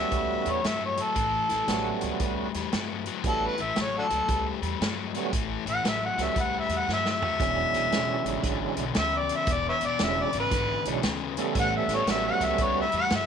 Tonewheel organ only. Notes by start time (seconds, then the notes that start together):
Already playing: G3 A3 B3 C#4 F#4
1.69 G3 A3 B3 C#4 F#4
3.25 G3 A3 B3 C#4 F#4
5.15 G3 A3 B3 C#4 F#4
6.20 G3 A3 B3 C#4 F#4
7.40 F#3 G#3 C#4 D4 E4
10.00 F#3 G#3 C#4 D4 E4
10.86 F#3 G#3 C#4 D4 E4
11.38 G3 A3 B3 C#4 A4
12.08 G3 A3 B3 C#4 F#4